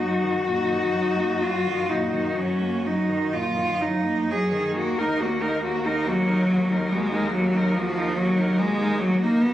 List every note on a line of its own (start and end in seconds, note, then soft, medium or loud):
0.00 4.51 F#2 soft
0.00 0.25 F#3 soft
0.00 0.36 D#4 soft
0.00 3.33 F#4 medium
0.24 0.48 D#3 soft
0.47 0.72 A#2 soft
0.47 1.44 D#4 soft
0.70 0.95 D#3 soft
0.93 1.18 F#3 soft
1.17 1.43 A#3 soft
1.42 1.68 F#3 soft
1.42 1.91 F4 soft
1.66 1.88 D#3 soft
1.89 2.14 A#2 soft
1.89 2.40 D#4 soft
2.12 2.38 D#3 soft
2.37 2.62 F#3 soft
2.37 2.88 C#4 soft
2.61 2.87 A#3 soft
2.85 3.11 F#3 soft
2.85 3.34 D#4 soft
3.09 3.35 D#3 soft
3.33 3.58 A#2 soft
3.33 3.83 F4 soft
3.56 3.82 D#3 soft
3.80 4.06 F#3 soft
3.80 4.32 D#4 soft
4.04 4.30 A#3 soft
4.28 4.53 F#3 soft
4.28 4.75 G#4 soft
4.52 4.75 D#3 soft
4.75 9.54 D#2 medium
4.75 5.01 A#3 soft
4.75 5.00 F#4 medium
4.99 5.23 D#4 soft
4.99 5.22 A#4 soft
5.21 5.42 A#3 soft
5.21 5.43 F#4 soft
5.41 5.63 D#4 soft
5.41 5.63 A#4 soft
5.64 5.86 A#3 soft
5.64 5.88 F#4 soft
5.85 6.08 D#4 soft
5.85 6.09 A#4 soft
6.04 6.93 F#3 medium
6.04 6.30 A#3 soft
6.04 6.29 F#4 soft
6.27 6.49 D#4 soft
6.27 6.49 A#4 soft
6.49 6.72 A#3 soft
6.49 6.73 F#4 soft
6.70 6.93 D#4 soft
6.70 6.95 A#4 soft
6.91 7.32 G#3 medium
6.91 7.13 A#3 medium
6.91 7.17 F#4 soft
7.11 7.32 D#4 soft
7.15 7.35 A#4 soft
7.32 7.76 F#3 medium
7.32 7.55 A#3 soft
7.32 7.59 F#4 soft
7.54 7.77 D#4 soft
7.54 7.81 A#4 soft
7.74 8.18 F3 medium
7.74 7.98 A#3 soft
7.79 8.01 F#4 soft
7.97 8.17 D#4 soft
7.97 8.18 A#4 soft
8.16 8.60 F#3 medium
8.16 8.38 A#3 soft
8.16 8.43 F#4 soft
8.37 8.59 D#4 soft
8.41 8.64 A#4 soft
8.58 9.01 G#3 medium
8.58 8.82 A#3 medium
8.62 8.84 F#4 soft
8.80 9.01 D#4 soft
8.80 9.03 A#4 soft
9.00 9.21 F#3 medium
9.00 9.24 A#3 medium
9.00 9.28 F#4 soft
9.21 9.43 A#3 medium
9.21 9.45 D#4 soft
9.26 9.47 A#4 soft
9.41 9.54 A#3 soft
9.41 9.54 B3 medium
9.46 9.54 F#4 medium